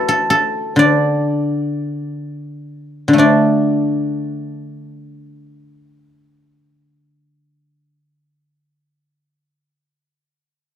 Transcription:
Already playing: E3 E4 F#4 B4 D5
0.09 A4
0.30 A4
0.76 D3 D5
3.08 D3
3.13 A3
3.18 D4 D5

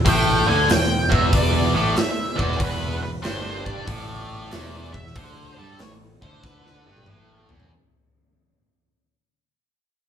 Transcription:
0.05 A1 A2 G5, kick, open hi-hat
0.48 D2 D3 G#5
0.68 E1 E2 G5, snare, open hi-hat
1.10 E1 E2 E5, kick
1.33 D5, kick, open hi-hat
1.74 A1 A2 D5
1.96 E5, muted distorted electric guitar stroke, muted picked electric bass stroke, snare, open hi-hat
2.37 E1 E2 D5, kick
2.52 snare
2.58 E1 E2 B4, kick, open hi-hat
3.01 E1 E2 B4
3.22 G1 G2 C5, snare, open hi-hat
3.65 D5, kick
3.86 A1 A2, kick, open hi-hat
4.50 E1 E2, snare, open hi-hat
4.93 E1 E2 E5, kick
5.07 snare
5.16 D2 D3 C5, kick, open hi-hat
5.58 G2 G3 A4
5.79 A1 A2 C#5, snare, open hi-hat
6.22 D2 D3 C5, kick
6.44 B4, kick, snare
6.66 snare
6.86 G1 G2
6.97 high tom
7.06 A1 A2, mid tom
7.49 E1 E2, floor tom
7.60 floor tom

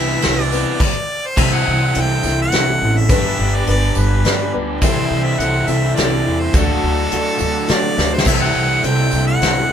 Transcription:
Already playing: C2 C3 E3 G3 B3 E4 B4 E5
0.22 C2 E3 G3 C4 E4 B4, snare, ride
0.42 D5
0.51 G3 B3 C4 E4 B4, tambourine
0.80 D5, kick, crash
1.27 C5
1.37 C2 C3 E3 G3 C4 E4 G4 A4 C5 E5 C6, kick, crash, tambourine
1.54 F#5
1.67 C2
1.95 C2 G3 C4 E4 A4 C5, closed hi-hat
2.00 G5
2.10 tambourine
2.23 C2 G3 C4 E4 A4, tambourine
2.42 F#5
2.52 C2 G3 C4 E4 A4 C5, snare, closed hi-hat, tambourine
2.66 tambourine
2.81 A1 G3 C4 E4 A4
2.98 E5
3.09 G1 G2 D3 G3 B3 D4 G4 B4 D5 B5, kick, closed hi-hat, tambourine
3.15 G4
3.39 G1
3.55 D5
3.67 G1 G3 D4 G4 B4 D5, closed hi-hat
3.81 tambourine
3.95 G1 B4, tambourine
4.24 G2 G3 D4 G4 B4 D5, snare, closed hi-hat, tambourine
4.39 tambourine
4.54 D2 D4 G4 B4
4.81 C2 C3 E3 G3 C4 E4 G4 A4 C5 E5 C6, kick, closed hi-hat, tambourine
4.96 tambourine
5.10 C2
5.24 E5
5.39 C2 G3 C4 E4 A4 C5 F#5, closed hi-hat
5.54 tambourine
5.67 C2 G3 C4 E4 A4 E5, tambourine
5.95 C2 G3 C4 E4 A4 C5 D5, snare, closed hi-hat, tambourine
6.11 tambourine
6.25 E2 G3 C4 E4 A4
6.40 C5
6.54 D2 D3 F#3 A3 D4 F#4 A4 D5 F#5 D6, kick, closed hi-hat, tambourine
6.84 D2
6.97 tambourine
7.12 D2 A3 D4 F#4 A4 D5, closed hi-hat
7.26 tambourine
7.39 D2 D4 F#4 A4, tambourine
7.68 D3 A3 D4 F#4 A4 D5, snare, closed hi-hat, tambourine
7.82 tambourine
7.97 D2 D4 F#4 A4, snare, tambourine
8.14 C5
8.18 snare
8.25 C2 C3 E3 G3 C4 E4 A4 C5 E5 C6, kick, closed hi-hat, crash, tambourine
8.30 G4
8.42 F#5
8.55 C2
8.83 C2 G3 C4 E4 A4 C5 G5, closed hi-hat
8.98 tambourine
9.11 C2 G3 C4 E4 A4, tambourine
9.27 F#5
9.41 C2 G3 C4 E4 A4 C5, snare, closed hi-hat, tambourine
9.56 tambourine
9.69 C2

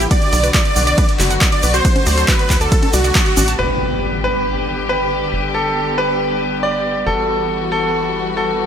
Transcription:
0.00 closed hi-hat, shaker
0.11 D3 F#3 B3 F#4 D5 F#5, kick, closed hi-hat, ride, shaker
0.22 closed hi-hat
0.33 B1 D5, open hi-hat, shaker
0.43 B4, closed hi-hat, shaker
0.54 F#4 D5, kick, clap, closed hi-hat, ride, shaker
0.65 closed hi-hat
0.76 B1 F#5, open hi-hat, shaker
0.87 D5, closed hi-hat, shaker
0.98 B4, kick, closed hi-hat, ride, shaker
1.09 closed hi-hat
1.20 F#1 F#4, clap, open hi-hat, shaker
1.30 F#5, closed hi-hat, shaker
1.41 D5, kick, clap, closed hi-hat, ride, shaker
1.52 D5, closed hi-hat
1.63 B1 B4, open hi-hat, shaker
1.74 F#4 C5, closed hi-hat, shaker
1.85 D3 A3 F#5, kick, closed hi-hat, ride, shaker
1.96 C5, closed hi-hat, high conga
2.06 D2 D5, open hi-hat, shaker
2.17 A4, closed hi-hat, shaker
2.28 F#4 B4, kick, clap, closed hi-hat, ride, shaker
2.39 closed hi-hat
2.50 D2 F#5, kick, clap, open hi-hat, shaker
2.61 A4 D5, closed hi-hat, shaker
2.72 A4, kick, closed hi-hat, ride, shaker
2.83 closed hi-hat, high conga
2.93 C2 F#4 D5, open hi-hat, shaker
3.04 D5, closed hi-hat, shaker
3.15 A5, kick, clap, closed hi-hat, ride, shaker
3.26 F#4, closed hi-hat
3.37 A1 D5, open hi-hat, high conga, shaker
3.47 A5, closed hi-hat, shaker
3.59 G1 D3 G3 B3 G4 B4, impact
4.24 B4
4.89 B4
5.33 G1
5.54 A4
5.98 B4
6.63 D5
7.07 G1 E3 F#4 A4
7.72 A4
8.37 A4

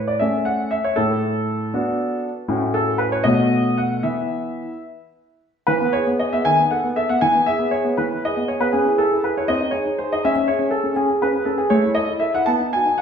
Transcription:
Already playing: A2
0.08 D5
0.19 A3 C#4 A4 E5
0.45 F#5
0.71 E5
0.84 C#5
0.96 A2 A4
1.74 B3 D4 F#4
2.48 A2 A3 C#4 F#4
2.74 A4
2.98 B4
3.12 C#5
3.24 B2 A3 B3 F#4 D#5
3.78 F#5
4.03 E3 B3 E4 E5
5.67 E3 B4
5.81 B3
5.93 G#4 C#5
6.07 B3
6.19 G#4 D#5
6.33 B3 E5
6.45 D#3 G#5
6.59 B3
6.71 A4 F#5
6.84 B3
6.96 A4 E5
7.09 B3 F#5
7.21 E3 G#5
7.34 B3
7.46 G#4 E5
7.59 B3
7.71 G#4 C#5
7.84 B3
7.97 E3 B4
8.12 E4
8.25 G#4 D#5
8.37 B3
8.48 G#4 C#5
8.60 B3 B4
8.73 C#4 G#4
8.86 E4
8.98 G#4 A4
9.12 E4
9.24 G#4 B4
9.37 E4 C#5
9.48 C4 D#5
9.60 D#4
9.71 G#4 C#5
9.86 D#4
9.98 G#4 C5
10.12 D#4 D#5
10.25 C#4 E5
10.36 C#4
10.48 G#4 C#5
10.59 C#4
10.71 G#4 A4
10.84 C#4
10.96 C#4 G#4
11.10 G#4
11.22 C#4 B4
11.34 G#4
11.45 C#4 A4
11.58 G#4
11.70 A3 C#5
11.84 E4
11.95 A4 D#5
12.07 E4
12.20 A4 E5
12.34 E4 F#5
12.46 B3 A5
12.60 D#4
12.73 F#4 G#5
12.86 D#4
12.98 F#5

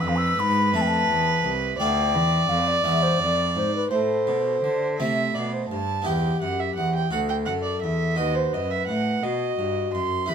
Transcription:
Already playing: D4 G#4 B4
0.00 F2 E6
0.08 F5
0.16 E6
0.38 G#2 B5
0.73 F2 A3 C4 A4 A5
0.81 G5
0.88 A5
1.08 E2
1.44 C2
1.79 D2 A3 B3 F4 D5 G5
2.14 E2
2.49 F2 F5
2.68 D5
2.84 E2 G#3 B3 E4 E5
3.02 C5
3.19 F2 D5
3.55 G#2 C5
3.76 B4
3.91 A2 A4 C5
4.27 B2
4.63 D3
4.98 C3 A3 C4 E4 E5
5.34 B2 D5
5.52 C5
5.69 G2 A5
6.02 B3 E4 G4 G5
6.06 E2 G4
6.41 F#2 F#5
6.60 E5
6.76 E2 F#5
6.96 G5
7.11 D2 F#4 A4 F#5
7.29 G5
7.46 F#2 F#5
7.63 D5
7.82 E2 E5
8.16 D#2 F#4 B4 D#5
8.35 C5
8.53 F#2 D#5
8.71 E5
8.87 A2 F#5
9.23 B2 F#4 D#5
9.58 G2
9.93 F#2 C6
10.26 E2 E4 G4 B4 B5

